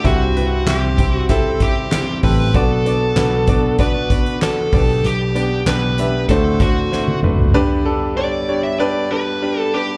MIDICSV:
0, 0, Header, 1, 6, 480
1, 0, Start_track
1, 0, Tempo, 624350
1, 36, Time_signature, 4, 2, 24, 8
1, 7666, End_track
2, 0, Start_track
2, 0, Title_t, "Lead electric guitar"
2, 0, Program_c, 0, 29
2, 45, Note_on_c, 0, 66, 74
2, 529, Note_off_c, 0, 66, 0
2, 532, Note_on_c, 0, 67, 73
2, 878, Note_off_c, 0, 67, 0
2, 878, Note_on_c, 0, 66, 73
2, 1001, Note_on_c, 0, 69, 80
2, 1019, Note_off_c, 0, 66, 0
2, 1246, Note_off_c, 0, 69, 0
2, 1247, Note_on_c, 0, 67, 84
2, 1692, Note_off_c, 0, 67, 0
2, 1721, Note_on_c, 0, 71, 90
2, 1960, Note_off_c, 0, 71, 0
2, 1963, Note_on_c, 0, 69, 86
2, 2890, Note_off_c, 0, 69, 0
2, 2919, Note_on_c, 0, 71, 81
2, 3368, Note_off_c, 0, 71, 0
2, 3401, Note_on_c, 0, 69, 89
2, 3886, Note_on_c, 0, 67, 82
2, 3895, Note_off_c, 0, 69, 0
2, 4358, Note_on_c, 0, 71, 83
2, 4377, Note_off_c, 0, 67, 0
2, 4808, Note_off_c, 0, 71, 0
2, 4833, Note_on_c, 0, 69, 83
2, 5081, Note_on_c, 0, 66, 70
2, 5084, Note_off_c, 0, 69, 0
2, 5530, Note_off_c, 0, 66, 0
2, 6280, Note_on_c, 0, 74, 98
2, 6634, Note_off_c, 0, 74, 0
2, 6637, Note_on_c, 0, 76, 93
2, 6756, Note_off_c, 0, 76, 0
2, 6759, Note_on_c, 0, 74, 101
2, 7002, Note_on_c, 0, 71, 98
2, 7007, Note_off_c, 0, 74, 0
2, 7379, Note_off_c, 0, 71, 0
2, 7379, Note_on_c, 0, 69, 98
2, 7486, Note_on_c, 0, 67, 88
2, 7495, Note_off_c, 0, 69, 0
2, 7666, Note_off_c, 0, 67, 0
2, 7666, End_track
3, 0, Start_track
3, 0, Title_t, "Grand piano"
3, 0, Program_c, 1, 0
3, 0, Control_c, 1, 64, 127
3, 32, Note_on_c, 1, 76, 94
3, 33, Note_on_c, 1, 43, 59
3, 35, Note_on_c, 1, 60, 82
3, 35, Note_on_c, 1, 64, 82
3, 36, Note_on_c, 1, 67, 81
3, 46, Control_c, 1, 64, 0
3, 172, Control_c, 1, 64, 127
3, 237, Note_off_c, 1, 76, 0
3, 238, Note_off_c, 1, 60, 0
3, 238, Note_off_c, 1, 64, 0
3, 239, Note_off_c, 1, 67, 0
3, 280, Note_on_c, 1, 67, 59
3, 282, Note_on_c, 1, 64, 62
3, 282, Note_on_c, 1, 71, 75
3, 285, Note_on_c, 1, 60, 64
3, 481, Note_off_c, 1, 67, 0
3, 482, Note_off_c, 1, 64, 0
3, 482, Note_off_c, 1, 71, 0
3, 483, Note_off_c, 1, 60, 0
3, 514, Note_on_c, 1, 60, 66
3, 514, Note_on_c, 1, 64, 59
3, 515, Note_on_c, 1, 67, 61
3, 516, Note_on_c, 1, 76, 72
3, 718, Note_off_c, 1, 60, 0
3, 718, Note_off_c, 1, 64, 0
3, 718, Note_off_c, 1, 67, 0
3, 719, Note_off_c, 1, 76, 0
3, 724, Note_off_c, 1, 43, 0
3, 760, Note_on_c, 1, 67, 61
3, 763, Note_on_c, 1, 64, 56
3, 764, Note_on_c, 1, 60, 64
3, 766, Note_on_c, 1, 79, 70
3, 961, Note_off_c, 1, 67, 0
3, 962, Note_off_c, 1, 64, 0
3, 963, Note_off_c, 1, 60, 0
3, 964, Note_off_c, 1, 79, 0
3, 997, Note_on_c, 1, 76, 97
3, 999, Note_on_c, 1, 60, 95
3, 1000, Note_on_c, 1, 67, 86
3, 1002, Note_on_c, 1, 64, 81
3, 1199, Note_off_c, 1, 76, 0
3, 1200, Note_off_c, 1, 60, 0
3, 1201, Note_off_c, 1, 67, 0
3, 1202, Note_off_c, 1, 64, 0
3, 1243, Note_on_c, 1, 67, 60
3, 1244, Note_on_c, 1, 60, 66
3, 1246, Note_on_c, 1, 64, 63
3, 1246, Note_on_c, 1, 76, 69
3, 1443, Note_off_c, 1, 60, 0
3, 1443, Note_off_c, 1, 67, 0
3, 1444, Note_off_c, 1, 64, 0
3, 1444, Note_off_c, 1, 76, 0
3, 1478, Note_on_c, 1, 67, 66
3, 1479, Note_on_c, 1, 64, 64
3, 1480, Note_on_c, 1, 79, 73
3, 1481, Note_on_c, 1, 60, 66
3, 1680, Note_off_c, 1, 67, 0
3, 1681, Note_off_c, 1, 64, 0
3, 1681, Note_off_c, 1, 79, 0
3, 1682, Note_off_c, 1, 60, 0
3, 1716, Note_on_c, 1, 60, 63
3, 1717, Note_on_c, 1, 67, 58
3, 1718, Note_on_c, 1, 64, 62
3, 1720, Note_on_c, 1, 69, 66
3, 1919, Note_off_c, 1, 60, 0
3, 1920, Note_off_c, 1, 64, 0
3, 1920, Note_off_c, 1, 67, 0
3, 1921, Note_off_c, 1, 69, 0
3, 1963, Note_on_c, 1, 62, 80
3, 1964, Note_on_c, 1, 59, 95
3, 1964, Note_on_c, 1, 66, 84
3, 1965, Note_on_c, 1, 74, 101
3, 1966, Control_c, 1, 64, 0
3, 2109, Control_c, 1, 64, 127
3, 2163, Note_off_c, 1, 62, 0
3, 2163, Note_off_c, 1, 66, 0
3, 2164, Note_off_c, 1, 59, 0
3, 2164, Note_off_c, 1, 74, 0
3, 2197, Note_on_c, 1, 59, 67
3, 2198, Note_on_c, 1, 62, 60
3, 2200, Note_on_c, 1, 66, 61
3, 2204, Note_on_c, 1, 74, 74
3, 2400, Note_off_c, 1, 59, 0
3, 2401, Note_off_c, 1, 62, 0
3, 2401, Note_off_c, 1, 66, 0
3, 2403, Note_off_c, 1, 74, 0
3, 2435, Note_on_c, 1, 71, 73
3, 2436, Note_on_c, 1, 62, 62
3, 2437, Note_on_c, 1, 59, 64
3, 2439, Note_on_c, 1, 66, 61
3, 2639, Note_off_c, 1, 71, 0
3, 2640, Note_off_c, 1, 59, 0
3, 2640, Note_off_c, 1, 62, 0
3, 2641, Note_off_c, 1, 66, 0
3, 2677, Note_on_c, 1, 59, 76
3, 2678, Note_on_c, 1, 62, 75
3, 2679, Note_on_c, 1, 66, 71
3, 2680, Note_on_c, 1, 74, 90
3, 2880, Note_off_c, 1, 59, 0
3, 2881, Note_off_c, 1, 62, 0
3, 2881, Note_off_c, 1, 66, 0
3, 2882, Note_off_c, 1, 74, 0
3, 2915, Note_on_c, 1, 59, 97
3, 2920, Note_on_c, 1, 62, 83
3, 2920, Note_on_c, 1, 66, 77
3, 2921, Note_on_c, 1, 74, 102
3, 3119, Note_off_c, 1, 59, 0
3, 3122, Note_off_c, 1, 62, 0
3, 3122, Note_off_c, 1, 66, 0
3, 3122, Note_off_c, 1, 74, 0
3, 3159, Note_on_c, 1, 59, 65
3, 3160, Note_on_c, 1, 66, 60
3, 3161, Note_on_c, 1, 74, 72
3, 3162, Note_on_c, 1, 62, 64
3, 3361, Note_off_c, 1, 59, 0
3, 3362, Note_off_c, 1, 66, 0
3, 3362, Note_off_c, 1, 74, 0
3, 3363, Note_off_c, 1, 62, 0
3, 3400, Note_on_c, 1, 66, 65
3, 3401, Note_on_c, 1, 74, 79
3, 3402, Note_on_c, 1, 62, 59
3, 3404, Note_on_c, 1, 59, 65
3, 3602, Note_off_c, 1, 66, 0
3, 3602, Note_off_c, 1, 74, 0
3, 3603, Note_off_c, 1, 62, 0
3, 3604, Note_off_c, 1, 59, 0
3, 3640, Note_on_c, 1, 59, 69
3, 3643, Note_on_c, 1, 47, 57
3, 3643, Note_on_c, 1, 67, 65
3, 3643, Note_on_c, 1, 74, 76
3, 3644, Note_on_c, 1, 62, 61
3, 3647, Control_c, 1, 64, 0
3, 3787, Control_c, 1, 64, 127
3, 4045, Note_off_c, 1, 59, 0
3, 4046, Note_off_c, 1, 62, 0
3, 4046, Note_off_c, 1, 67, 0
3, 4046, Note_off_c, 1, 74, 0
3, 4115, Note_on_c, 1, 59, 67
3, 4118, Note_on_c, 1, 62, 61
3, 4118, Note_on_c, 1, 67, 66
3, 4119, Note_on_c, 1, 74, 74
3, 4320, Note_off_c, 1, 59, 0
3, 4321, Note_off_c, 1, 62, 0
3, 4321, Note_off_c, 1, 67, 0
3, 4321, Note_off_c, 1, 74, 0
3, 4330, Note_off_c, 1, 47, 0
3, 4357, Note_on_c, 1, 59, 68
3, 4358, Note_on_c, 1, 62, 63
3, 4360, Note_on_c, 1, 67, 60
3, 4360, Note_on_c, 1, 71, 77
3, 4561, Note_off_c, 1, 59, 0
3, 4561, Note_off_c, 1, 62, 0
3, 4562, Note_off_c, 1, 67, 0
3, 4562, Note_off_c, 1, 71, 0
3, 4604, Note_on_c, 1, 59, 67
3, 4608, Note_on_c, 1, 62, 64
3, 4608, Note_on_c, 1, 67, 64
3, 4611, Note_on_c, 1, 76, 76
3, 4804, Note_off_c, 1, 59, 0
3, 4806, Note_off_c, 1, 62, 0
3, 4806, Note_off_c, 1, 67, 0
3, 4808, Note_off_c, 1, 76, 0
3, 4845, Note_on_c, 1, 62, 90
3, 4846, Note_on_c, 1, 66, 85
3, 4848, Note_on_c, 1, 45, 64
3, 4848, Note_on_c, 1, 57, 98
3, 4849, Note_on_c, 1, 72, 98
3, 4850, Control_c, 1, 64, 0
3, 4997, Control_c, 1, 64, 127
3, 5045, Note_off_c, 1, 62, 0
3, 5045, Note_off_c, 1, 66, 0
3, 5046, Note_off_c, 1, 57, 0
3, 5047, Note_off_c, 1, 72, 0
3, 5075, Note_on_c, 1, 57, 67
3, 5075, Note_on_c, 1, 62, 61
3, 5077, Note_on_c, 1, 66, 58
3, 5078, Note_on_c, 1, 72, 79
3, 5280, Note_off_c, 1, 57, 0
3, 5280, Note_off_c, 1, 62, 0
3, 5281, Note_off_c, 1, 66, 0
3, 5281, Note_off_c, 1, 72, 0
3, 5320, Note_on_c, 1, 57, 69
3, 5320, Note_on_c, 1, 72, 80
3, 5323, Note_on_c, 1, 62, 61
3, 5324, Note_on_c, 1, 66, 66
3, 5522, Note_off_c, 1, 57, 0
3, 5522, Note_off_c, 1, 72, 0
3, 5524, Note_off_c, 1, 62, 0
3, 5524, Note_off_c, 1, 66, 0
3, 5533, Note_off_c, 1, 45, 0
3, 5562, Note_on_c, 1, 66, 58
3, 5563, Note_on_c, 1, 57, 66
3, 5564, Note_on_c, 1, 62, 60
3, 5566, Note_on_c, 1, 71, 72
3, 5763, Note_off_c, 1, 66, 0
3, 5764, Note_off_c, 1, 57, 0
3, 5764, Note_off_c, 1, 62, 0
3, 5765, Note_off_c, 1, 71, 0
3, 5799, Note_on_c, 1, 62, 116
3, 5799, Note_on_c, 1, 67, 103
3, 5801, Note_on_c, 1, 71, 127
3, 5803, Note_on_c, 1, 50, 78
3, 5804, Note_on_c, 1, 43, 78
3, 5809, Control_c, 1, 64, 0
3, 5951, Control_c, 1, 64, 127
3, 6002, Note_off_c, 1, 62, 0
3, 6002, Note_off_c, 1, 67, 0
3, 6003, Note_off_c, 1, 71, 0
3, 6039, Note_on_c, 1, 67, 80
3, 6039, Note_on_c, 1, 69, 95
3, 6041, Note_on_c, 1, 62, 83
3, 6242, Note_off_c, 1, 67, 0
3, 6242, Note_off_c, 1, 69, 0
3, 6243, Note_off_c, 1, 62, 0
3, 6284, Note_on_c, 1, 73, 83
3, 6285, Note_on_c, 1, 62, 76
3, 6287, Note_on_c, 1, 67, 64
3, 6484, Note_off_c, 1, 73, 0
3, 6485, Note_off_c, 1, 62, 0
3, 6486, Note_off_c, 1, 67, 0
3, 6490, Note_off_c, 1, 50, 0
3, 6491, Note_off_c, 1, 43, 0
3, 6524, Note_on_c, 1, 67, 63
3, 6525, Note_on_c, 1, 73, 85
3, 6526, Note_on_c, 1, 62, 75
3, 6724, Note_off_c, 1, 67, 0
3, 6725, Note_off_c, 1, 62, 0
3, 6725, Note_off_c, 1, 73, 0
3, 6762, Note_on_c, 1, 62, 103
3, 6764, Note_on_c, 1, 67, 87
3, 6766, Note_on_c, 1, 71, 115
3, 6963, Note_off_c, 1, 62, 0
3, 6964, Note_off_c, 1, 67, 0
3, 6965, Note_off_c, 1, 71, 0
3, 7001, Note_on_c, 1, 67, 62
3, 7002, Note_on_c, 1, 62, 73
3, 7003, Note_on_c, 1, 71, 78
3, 7203, Note_off_c, 1, 62, 0
3, 7203, Note_off_c, 1, 67, 0
3, 7204, Note_off_c, 1, 71, 0
3, 7244, Note_on_c, 1, 67, 71
3, 7246, Note_on_c, 1, 62, 78
3, 7248, Note_on_c, 1, 71, 81
3, 7444, Note_off_c, 1, 67, 0
3, 7445, Note_off_c, 1, 62, 0
3, 7446, Note_off_c, 1, 71, 0
3, 7488, Note_on_c, 1, 67, 59
3, 7491, Note_on_c, 1, 62, 68
3, 7493, Note_on_c, 1, 71, 74
3, 7666, Note_off_c, 1, 62, 0
3, 7666, Note_off_c, 1, 67, 0
3, 7666, Note_off_c, 1, 71, 0
3, 7666, End_track
4, 0, Start_track
4, 0, Title_t, "Tonewheel organ"
4, 0, Program_c, 2, 16
4, 29, Note_on_c, 2, 64, 59
4, 31, Note_on_c, 2, 48, 64
4, 33, Note_on_c, 2, 55, 69
4, 34, Note_on_c, 2, 60, 56
4, 1935, Note_off_c, 2, 64, 0
4, 1936, Note_off_c, 2, 48, 0
4, 1937, Note_off_c, 2, 55, 0
4, 1937, Note_off_c, 2, 60, 0
4, 1951, Note_on_c, 2, 62, 60
4, 1953, Note_on_c, 2, 59, 65
4, 1955, Note_on_c, 2, 66, 71
4, 3621, Note_off_c, 2, 66, 0
4, 3629, Note_on_c, 2, 67, 66
4, 4807, Note_off_c, 2, 62, 0
4, 4808, Note_off_c, 2, 59, 0
4, 4823, Note_off_c, 2, 67, 0
4, 4838, Note_on_c, 2, 50, 65
4, 4838, Note_on_c, 2, 57, 54
4, 4838, Note_on_c, 2, 60, 56
4, 4840, Note_on_c, 2, 66, 68
4, 5789, Note_off_c, 2, 50, 0
4, 5789, Note_off_c, 2, 57, 0
4, 5790, Note_off_c, 2, 60, 0
4, 5790, Note_off_c, 2, 66, 0
4, 5795, Note_on_c, 2, 55, 67
4, 5795, Note_on_c, 2, 59, 62
4, 5798, Note_on_c, 2, 62, 74
4, 7666, Note_off_c, 2, 55, 0
4, 7666, Note_off_c, 2, 59, 0
4, 7666, Note_off_c, 2, 62, 0
4, 7666, End_track
5, 0, Start_track
5, 0, Title_t, "Picked electric bass"
5, 0, Program_c, 3, 34
5, 35, Note_on_c, 3, 36, 96
5, 485, Note_off_c, 3, 36, 0
5, 513, Note_on_c, 3, 36, 82
5, 1685, Note_off_c, 3, 36, 0
5, 1717, Note_on_c, 3, 33, 74
5, 1941, Note_off_c, 3, 33, 0
5, 1955, Note_on_c, 3, 35, 94
5, 2406, Note_off_c, 3, 35, 0
5, 2432, Note_on_c, 3, 35, 96
5, 3605, Note_off_c, 3, 35, 0
5, 3634, Note_on_c, 3, 35, 91
5, 3860, Note_off_c, 3, 35, 0
5, 3876, Note_on_c, 3, 35, 86
5, 4327, Note_off_c, 3, 35, 0
5, 4355, Note_on_c, 3, 35, 81
5, 4806, Note_off_c, 3, 35, 0
5, 4833, Note_on_c, 3, 38, 92
5, 5286, Note_off_c, 3, 38, 0
5, 5556, Note_on_c, 3, 30, 89
5, 5781, Note_off_c, 3, 30, 0
5, 7666, End_track
6, 0, Start_track
6, 0, Title_t, "Drums"
6, 37, Note_on_c, 9, 36, 91
6, 37, Note_on_c, 9, 42, 75
6, 113, Note_off_c, 9, 36, 0
6, 114, Note_off_c, 9, 42, 0
6, 282, Note_on_c, 9, 42, 59
6, 359, Note_off_c, 9, 42, 0
6, 516, Note_on_c, 9, 38, 92
6, 517, Note_on_c, 9, 42, 87
6, 520, Note_on_c, 9, 39, 81
6, 593, Note_off_c, 9, 38, 0
6, 593, Note_off_c, 9, 42, 0
6, 596, Note_off_c, 9, 39, 0
6, 756, Note_on_c, 9, 36, 80
6, 756, Note_on_c, 9, 42, 65
6, 833, Note_off_c, 9, 36, 0
6, 833, Note_off_c, 9, 42, 0
6, 992, Note_on_c, 9, 42, 81
6, 994, Note_on_c, 9, 36, 76
6, 1069, Note_off_c, 9, 42, 0
6, 1071, Note_off_c, 9, 36, 0
6, 1232, Note_on_c, 9, 42, 70
6, 1233, Note_on_c, 9, 36, 83
6, 1309, Note_off_c, 9, 42, 0
6, 1310, Note_off_c, 9, 36, 0
6, 1473, Note_on_c, 9, 38, 103
6, 1477, Note_on_c, 9, 39, 96
6, 1479, Note_on_c, 9, 42, 92
6, 1550, Note_off_c, 9, 38, 0
6, 1554, Note_off_c, 9, 39, 0
6, 1556, Note_off_c, 9, 42, 0
6, 1715, Note_on_c, 9, 46, 77
6, 1718, Note_on_c, 9, 36, 86
6, 1791, Note_off_c, 9, 46, 0
6, 1795, Note_off_c, 9, 36, 0
6, 1955, Note_on_c, 9, 36, 91
6, 1956, Note_on_c, 9, 42, 77
6, 2032, Note_off_c, 9, 36, 0
6, 2033, Note_off_c, 9, 42, 0
6, 2200, Note_on_c, 9, 42, 59
6, 2277, Note_off_c, 9, 42, 0
6, 2433, Note_on_c, 9, 38, 96
6, 2434, Note_on_c, 9, 42, 85
6, 2437, Note_on_c, 9, 39, 77
6, 2510, Note_off_c, 9, 38, 0
6, 2511, Note_off_c, 9, 42, 0
6, 2514, Note_off_c, 9, 39, 0
6, 2670, Note_on_c, 9, 42, 64
6, 2673, Note_on_c, 9, 36, 87
6, 2747, Note_off_c, 9, 42, 0
6, 2750, Note_off_c, 9, 36, 0
6, 2910, Note_on_c, 9, 42, 79
6, 2912, Note_on_c, 9, 36, 75
6, 2987, Note_off_c, 9, 42, 0
6, 2989, Note_off_c, 9, 36, 0
6, 3153, Note_on_c, 9, 36, 81
6, 3154, Note_on_c, 9, 42, 69
6, 3230, Note_off_c, 9, 36, 0
6, 3231, Note_off_c, 9, 42, 0
6, 3276, Note_on_c, 9, 42, 40
6, 3353, Note_off_c, 9, 42, 0
6, 3396, Note_on_c, 9, 38, 100
6, 3400, Note_on_c, 9, 39, 87
6, 3402, Note_on_c, 9, 42, 87
6, 3473, Note_off_c, 9, 38, 0
6, 3477, Note_off_c, 9, 39, 0
6, 3479, Note_off_c, 9, 42, 0
6, 3633, Note_on_c, 9, 46, 76
6, 3635, Note_on_c, 9, 36, 105
6, 3710, Note_off_c, 9, 46, 0
6, 3712, Note_off_c, 9, 36, 0
6, 3878, Note_on_c, 9, 42, 80
6, 3955, Note_off_c, 9, 42, 0
6, 4119, Note_on_c, 9, 42, 63
6, 4196, Note_off_c, 9, 42, 0
6, 4357, Note_on_c, 9, 38, 101
6, 4358, Note_on_c, 9, 42, 86
6, 4361, Note_on_c, 9, 39, 83
6, 4434, Note_off_c, 9, 38, 0
6, 4435, Note_off_c, 9, 42, 0
6, 4438, Note_off_c, 9, 39, 0
6, 4598, Note_on_c, 9, 42, 67
6, 4675, Note_off_c, 9, 42, 0
6, 4834, Note_on_c, 9, 42, 77
6, 4835, Note_on_c, 9, 36, 80
6, 4911, Note_off_c, 9, 36, 0
6, 4911, Note_off_c, 9, 42, 0
6, 5074, Note_on_c, 9, 36, 91
6, 5074, Note_on_c, 9, 42, 66
6, 5150, Note_off_c, 9, 42, 0
6, 5151, Note_off_c, 9, 36, 0
6, 5320, Note_on_c, 9, 38, 55
6, 5397, Note_off_c, 9, 38, 0
6, 5440, Note_on_c, 9, 48, 55
6, 5517, Note_off_c, 9, 48, 0
6, 5559, Note_on_c, 9, 45, 86
6, 5636, Note_off_c, 9, 45, 0
6, 5680, Note_on_c, 9, 43, 79
6, 5757, Note_off_c, 9, 43, 0
6, 7666, End_track
0, 0, End_of_file